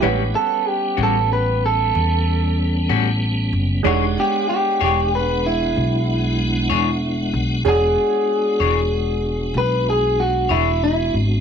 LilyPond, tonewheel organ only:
\new Staff \with { instrumentName = "Tonewheel organ" } { \time 12/8 \key e \mixolydian \tempo 4. = 63 <gis b d' g'>8 <g b cis'>1~ <g b cis'>4. | <gis d' dis' g'>8 <gis b d' fis''>1~ <gis b d' fis''>4. | <gis b d' fis'>1. | }